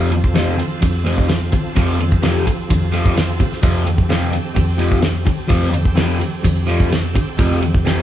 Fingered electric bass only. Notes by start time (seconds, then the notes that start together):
Already playing: F2
0.83 F2
1.77 F2
2.70 F2
3.63 F2
4.57 F2
5.51 F2
6.45 F2
7.39 F2